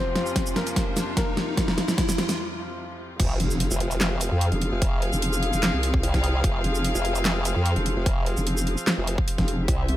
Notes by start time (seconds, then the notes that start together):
Already playing: F2 C3 F3 C4 F4 C5, riser
0.16 snare, closed hi-hat
0.26 shaker
0.36 kick, snare, closed hi-hat
0.46 shaker
0.56 A#3 A#4, snare, closed hi-hat
0.67 closed hi-hat, shaker
0.76 kick, snare, closed hi-hat
0.97 snare, closed hi-hat, shaker
1.17 A#3 A#4, kick, snare, closed hi-hat
1.37 snare
1.57 kick, snare, closed hi-hat
1.68 snare
1.78 snare, closed hi-hat
1.88 snare, shaker
1.98 kick, snare, closed hi-hat
2.09 snare, shaker
2.18 snare, closed hi-hat
2.29 snare, closed hi-hat, shaker
3.20 F1 F3 C4 G#4 F5, kick, closed hi-hat, crash, impact
3.40 F1, closed hi-hat
3.51 shaker
3.60 closed hi-hat
3.71 F1, shaker
3.80 closed hi-hat
3.91 closed hi-hat, shaker
4.01 snare, clap, closed hi-hat
4.21 closed hi-hat, shaker
4.32 F2
4.41 closed hi-hat
4.52 F1, closed hi-hat
4.62 closed hi-hat
4.72 F1
4.82 kick, closed hi-hat
5.02 closed hi-hat
5.13 F1, shaker
5.22 closed hi-hat
5.33 shaker
5.43 closed hi-hat
5.53 F1, closed hi-hat, shaker
5.63 snare, clap, closed hi-hat
5.73 C2
5.83 closed hi-hat
5.94 kick
6.03 C2, closed hi-hat
6.14 kick, snare, closed hi-hat
6.24 closed hi-hat
6.44 F1, kick, closed hi-hat
6.64 F1, closed hi-hat
6.75 shaker
6.84 closed hi-hat
6.95 F1, shaker
7.05 closed hi-hat
7.15 closed hi-hat, shaker
7.25 snare, clap, closed hi-hat
7.45 closed hi-hat, shaker
7.56 F2
7.66 closed hi-hat
7.76 F1, closed hi-hat
7.86 closed hi-hat
7.96 F1
8.06 kick, closed hi-hat
8.26 closed hi-hat
8.37 F1, shaker
8.47 closed hi-hat
8.57 shaker
8.67 closed hi-hat
8.78 closed hi-hat, shaker
8.87 snare, clap, closed hi-hat
8.98 F1
9.07 closed hi-hat
9.18 kick
9.28 closed hi-hat
9.38 F1, kick, snare, closed hi-hat
9.48 closed hi-hat
9.68 C2 C3 G4 E5, kick, closed hi-hat
9.88 C2, closed hi-hat